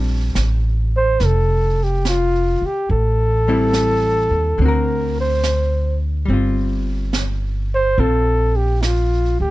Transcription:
0.00 0.31 A#1 medium
0.00 2.89 G3 soft
0.00 2.90 C4 soft
0.00 2.92 D4 medium
0.35 1.16 A1 medium
0.35 snare soft
0.35 hi-hat pedal medium
0.97 1.26 C5 loud
1.20 2.58 F1 medium
1.20 brush sweep soft
1.20 snare soft
1.25 1.85 A4 medium
1.84 2.07 G4 medium
2.05 2.67 F4 medium
2.05 snare soft
2.05 hi-hat pedal soft
2.62 muted upright bass stroke soft
2.66 2.90 G4 medium
2.89 4.27 A1 medium
2.89 4.64 A4 medium
2.89 brush sweep soft
3.48 4.59 G3 soft
3.48 4.59 C4 medium
3.48 4.60 E4 soft
3.73 snare soft
3.73 hi-hat pedal soft
4.31 4.56 D#2 medium
4.58 6.24 D2 medium
4.58 6.27 D3 soft
4.58 6.28 C4 soft
4.58 brush sweep soft
4.63 6.31 F#4 soft
4.63 5.18 A#4 medium
4.68 6.33 A#4 soft
5.20 5.99 C5 medium
5.44 snare soft
5.44 hi-hat pedal soft
6.25 7.94 G1 medium
6.25 9.51 G3 soft
6.25 brush sweep soft
6.30 7.97 C4 soft
6.30 7.99 F4 soft
7.13 snare soft
7.13 hi-hat pedal soft
7.75 8.01 C5 loud
7.97 9.36 A#1 medium
7.97 9.51 C4 soft
7.97 9.51 F4 soft
7.97 8.57 A4 medium
7.97 brush sweep soft
8.56 8.83 G4 medium
8.81 8.86 D#4 medium
8.81 9.40 F4 medium
8.81 snare soft
8.81 hi-hat pedal soft
9.40 9.51 D2 medium
9.40 9.51 G4 medium

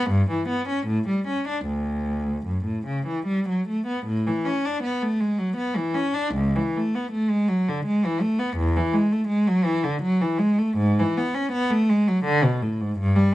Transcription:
0.00 0.11 B3 medium
0.10 0.29 G2 medium
0.30 0.49 E3 medium
0.48 0.67 B3 medium
0.68 0.87 C#4 medium
0.86 1.06 A2 medium
1.08 1.26 G3 medium
1.27 1.46 C#4 medium
1.48 1.66 D4 medium
1.66 2.45 D2 medium
2.46 2.66 F#2 soft
2.65 2.85 A2 soft
2.86 3.06 C#3 soft
3.07 3.26 E3 soft
3.26 3.46 G3 medium
3.49 3.67 F#3 soft
3.68 3.87 A3 medium
3.87 4.05 B3 medium
4.06 4.25 A2 medium
4.27 4.45 E3 medium
4.45 4.63 C#4 medium
4.65 4.83 D4 medium
4.83 5.01 B3 medium
5.02 5.20 A3 medium
5.20 5.39 G#3 medium
5.38 5.57 F#3 medium
5.56 5.75 B3 medium
5.76 5.96 E3 medium
5.94 6.15 C#4 medium
6.14 6.35 D4 medium
6.35 6.55 C#2 medium
6.55 6.75 E3 medium
6.77 6.95 A3 medium
6.95 7.13 B3 medium
7.12 7.30 A3 medium
7.30 7.48 G#3 medium
7.48 7.67 F#3 medium
7.69 7.86 D3 medium
7.86 8.03 G#3 medium
8.05 8.22 E3 medium
8.21 8.40 A3 medium
8.39 8.57 B3 medium
8.57 8.75 E2 medium
8.76 8.94 E3 medium
8.93 9.12 G#3 medium
9.12 9.30 A3 medium
9.28 9.47 G#3 medium
9.47 9.66 F#3 medium
9.64 9.84 E3 medium
9.84 10.03 D3 medium
10.02 10.21 F#3 medium
10.21 10.41 E3 medium
10.39 10.59 G#3 medium
10.58 10.79 A3 medium
10.77 10.97 G#2 medium
10.99 11.18 E3 medium
11.17 11.36 B3 medium
11.35 11.53 C#4 medium
11.52 11.70 B3 medium
11.70 11.89 A3 medium
11.89 12.07 G#3 medium
12.08 12.26 F#3 medium
12.24 12.43 D3 medium
12.44 12.62 B2 medium
12.62 12.80 A2 medium
12.80 12.98 G#2 medium
12.99 13.16 G2 medium
13.16 13.34 G3 medium

